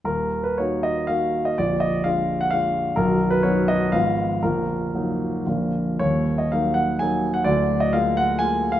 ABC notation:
X:1
M:3/4
L:1/16
Q:1/4=123
K:Ebm
V:1 name="Grand piano"
B3 c d2 e2 f3 e | =d2 e2 f3 g f4 | B3 =B d2 ^d2 f4 | B8- B2 z2 |
d3 e f2 g2 a3 g | =d3 e f2 g2 a3 f |]
V:2 name="Grand piano"
[E,,,E,,]4 [B,EG]4 [B,EG]4 | [B,,,,B,,,]4 [A,=DF]4 [A,DF]4 | [=B,,,,=B,,,]4 [^F,=B,^D]4 [A,,,A,,=F,CF]4 | [B,,,,B,,,]4 [G,B,E]4 [B,,,,B,,,F,B,=D]4 |
[E,,,E,,]4 [G,B,E]4 [G,B,E]4 | [=D,,,=D,,]4 [A,B,F]4 [A,B,F]4 |]